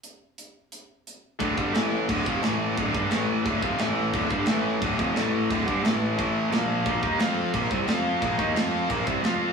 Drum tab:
CC |--------|x-x-x-x-|x-x-x-x-|x-x-x-x-|
HH |x-x-x-x-|--------|--------|--------|
SD |--------|--o---o-|--o---o-|--o---o-|
BD |--------|oo--oo--|oo--oo--|oo--oo--|

CC |x-x-x-x-|x-x-x-x-|x-x-x-x-|
HH |--------|--------|--------|
SD |--o---o-|--o---o-|--o---o-|
BD |oo--o---|oo--oo--|oo--oo--|